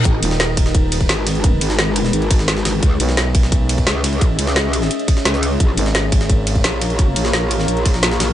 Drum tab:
RD |--x---x---x---x-|--x---x---x---x-|--x---x---x---x-|--x---x---x---x-|
HH |x-x-x-x-x-xxx-xx|x-x-x-x-xxx-x-x-|x-x-x-x-x-xxx-xx|x-x-x-x-xxx-x-x-|
SD |---oo--o----o-o-|---oo--o---oooo-|---oo--o----o-o-|---oo--o---ooo--|
BD |o-----o-o--o----|o---------o-----|o-----o-o--o----|o---------o-----|

RD |--x---x---x---x-|--x---x---x---x-|
HH |x-x-x-x-x-xxx-xx|x-x-x-x-xxx-x-x-|
SD |---oo--o----o-o-|---oo--o---oooo-|
BD |o-----o-o--o----|o---------o-----|